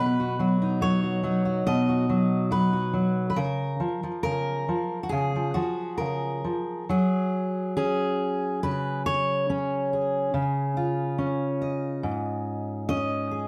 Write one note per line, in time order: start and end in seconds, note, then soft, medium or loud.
0.00 1.66 B2 medium
0.00 0.38 F#3 medium
0.00 0.82 B4 loud
0.20 0.39 F#4 soft
0.39 0.80 F#3 medium
0.39 1.02 F#4 soft
0.62 1.23 D#4 soft
0.81 1.22 F#3 medium
0.81 1.66 C#5 loud
1.03 1.44 F#4 soft
1.23 2.08 F#3 medium
1.23 3.31 D#4 soft
1.45 1.88 F#4 soft
1.67 3.32 B2 medium
1.67 2.51 D#5 loud
1.89 2.72 F#4 soft
2.09 2.50 F#3 medium
2.51 2.92 F#3 medium
2.51 3.29 B4 medium
2.73 3.32 F#4 soft
2.93 3.36 F#3 medium
3.30 3.37 B4 medium
3.36 3.80 C#3 medium
3.36 4.22 A#4 medium
3.80 4.02 F3 medium
4.03 4.67 F3 soft
4.23 4.68 C#3 medium
4.23 5.03 A#4 medium
4.68 5.34 F3 medium
5.03 5.11 F#4 medium
5.09 5.56 C#3 medium
5.09 6.88 G#4 medium
5.36 5.54 F3 soft
5.54 6.43 F3 medium
5.54 5.97 F#4 medium
5.98 6.45 C#3 medium
5.98 6.87 A#4 medium
6.44 6.83 F3 soft
6.89 10.35 F#3 medium
6.89 7.75 G#4 medium
7.77 9.49 C#4 medium
7.77 8.63 G#4 medium
8.63 10.33 C#3 medium
8.63 9.06 B4 medium
9.06 9.92 C#5 loud
9.50 10.76 C#4 medium
9.93 11.61 G#4 soft
10.34 12.03 C#3 medium
10.77 13.48 F4 medium
11.18 12.89 C#4 medium
11.62 12.87 D#5 soft
12.03 13.48 G#2 medium
12.89 13.48 C#4 medium
12.89 13.48 D#5 loud
13.31 13.48 G#4 soft